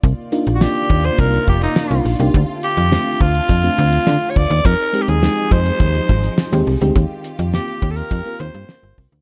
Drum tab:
HH |x-xx-xxxxxxx-xox|x-xx--xxx-xx--ox|xxxx--xxxxxx-xox|x-xx-xxxx-xx--ox|
SD |----o-------o---|----o-------o---|----o-------o---|----o-------o---|
BD |o-----o-o-o-----|o-----o-o-----o-|o-----o-o-o-----|o-----o-o-----o-|